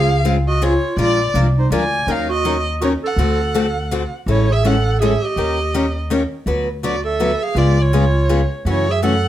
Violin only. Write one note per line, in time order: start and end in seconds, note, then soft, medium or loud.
0.00 0.23 F5 loud
0.48 0.65 D#5 medium
0.64 0.99 C#5 medium
1.00 1.33 D5 loud
1.59 1.71 C5 medium
1.74 2.13 G#5 medium
2.11 2.32 F5 loud
2.33 2.65 D#5 medium
2.83 2.93 C#5 medium
3.06 4.10 F#5 medium
4.31 4.54 C#5 medium
4.52 4.68 E5 medium
4.67 5.02 F#5 medium
5.02 5.27 E5 medium
5.25 5.97 D#5 medium
6.85 7.04 D5 medium
7.07 7.45 E5 medium
7.43 7.60 F5 medium
7.58 7.84 D5 medium
7.82 8.53 C#5 loud
8.70 8.93 C#5 loud
8.91 9.04 E5 medium
9.06 9.28 F#5 medium